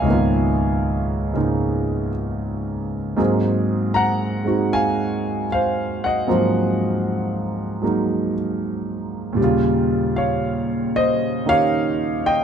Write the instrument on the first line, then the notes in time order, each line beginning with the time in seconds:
grand piano
Already playing: B4 C#5 D#5 E5 F5 G#5
0.02 C#2 G#2
0.06 D#3 A#3
0.10 B3 F4
1.33 G#2 C#3 G#3 A#3 D#4
3.17 G#2 F#3 A#3 C4 G#4
3.94 F#5 A#5
4.45 G#3 C4 D#4 F#4
4.73 F5 G#5
5.52 C5 F5
6.04 D#5 F#5
6.27 G#2 F3 F#3 A#3 C4
7.82 F#3 G#3 A#3 D#4
9.33 D#2 A#2
9.37 G3
9.41 C#3 F4
10.16 C#5 F5
10.96 C5 D#5
11.46 D#3 A#3 C#4 D#4 G4 C#5 F5
12.26 D#5 G5